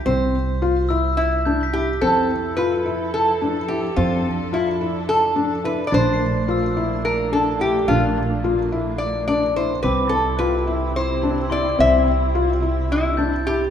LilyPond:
<<
  \new Staff \with { instrumentName = "Glockenspiel" } { \time 7/8 \key f \lydian \tempo 4 = 107 <g''' b'''>8. r8. e'''4 g'''16 b'''8. | g'''2.~ g'''16 r16 | r2. r8 | a'''16 c''''8. e'''2~ e'''8~ |
e'''8. r2 r8. | d'''2. c'''8~ | c'''2~ c'''8 <g''' a'''>4 | }
  \new Staff \with { instrumentName = "Resonator guitar played with a steel bar" } { \time 7/8 \key f \lydian c''2 e'4 g'8 | a'4 b'4 a'4 g'8 | f'4 e'4 a'4 b'16. d''32 | c''2 bes'8 a'8 g'8 |
f'2 d''8 d''8 c''8 | b'8 a'8 b'4 c''4 d''8 | e''2 e'4 g'8 | }
  \new Staff \with { instrumentName = "Felt piano" } { \time 7/8 \key f \lydian c'4 f'8 e'4 d'8 e'8 | c'4 f'8 e'4 d'8 e'8 | c'4 f'8 e'4 d'8 e'8 | d'4 f'8 e'4 d'8 e'8 |
d'4 f'8 e'4 d'8 e'8 | c'4 f'8 e'4 d'8 e'8 | c'4 f'8 e'4 d'8 e'8 | }
  \new Staff \with { instrumentName = "String section" } { \time 7/8 \key f \lydian << { r2. r8 | <f a'>2.~ <f a'>8~ | <f a'>2.~ <f a'>8 | a2.~ a8~ |
a2.~ a8 | <c e'>2.~ <c e'>8~ | <c e'>2.~ <c e'>8 | } \\ { r2. r8 | e'2.~ e'8 | d'2.~ d'8 | bes2.~ bes8~ |
bes2.~ bes8 | c'2.~ c'8~ | c'2.~ c'8 | } >> }
  \new Staff \with { instrumentName = "Upright bass" } { \clef bass \time 7/8 \key f \lydian c,2.~ c,8 | f,2.~ f,8 | f,2.~ f,8 | bes,,2.~ bes,,8 |
bes,,2.~ bes,,8 | c,2.~ c,8 | c,2.~ c,8 | }
>>